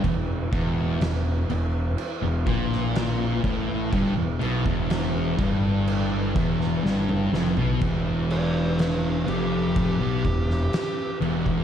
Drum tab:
CC |x-x-x-x-x-x-x-x-|x-x-x-x-x-x-----|x-x-x-x-x-x-x-x-|
SD |----o------oo---|----o------oo-o-|----o------oo---|
T2 |----------------|-------------o--|----------------|
FT |----------------|---------------o|----------------|
BD |o-o-------o---o-|o--o--o---o-----|o-------o-o----o|